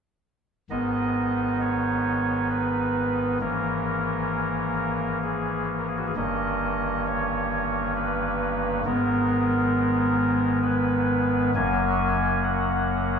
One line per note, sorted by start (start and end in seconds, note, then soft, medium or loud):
0.70 3.38 G#1 soft
0.70 3.38 G#2 medium
0.70 3.38 D#3 soft
0.70 3.38 B3 soft
0.70 3.38 D#4 soft
0.70 1.58 D#5 medium
1.61 2.48 C#5 medium
2.50 3.38 B4 medium
3.41 6.11 G#1 medium
3.41 6.11 G#2 soft
3.41 6.12 E3 soft
3.41 6.12 A#3 soft
3.41 6.11 C#4 soft
3.41 5.19 A#4 medium
5.23 5.70 G#4 medium
5.79 5.86 A#4 medium
5.88 5.96 G#4 medium
5.97 6.05 F#4 medium
6.07 6.15 G#4 medium
6.16 8.82 G1 soft
6.16 8.81 G2 medium
6.16 8.81 D#3 soft
6.16 8.81 A#3 soft
6.16 8.81 C#4 soft
6.16 7.04 D#5 medium
7.07 7.93 C#5 medium
7.96 8.82 B4 medium
8.85 11.51 G#1 medium
8.85 11.51 G#2 medium
8.85 11.51 D#3 soft
8.85 11.50 G#3 soft
8.85 11.50 B3 soft
8.85 10.60 A#4 loud
10.63 11.51 B4 medium
11.55 13.19 F#1 medium
11.55 13.19 F#2 medium
11.55 13.19 F#3 medium
11.55 13.19 A#3 medium
11.55 13.19 C#4 medium
11.55 12.41 G#5 loud
12.43 13.19 F#5 medium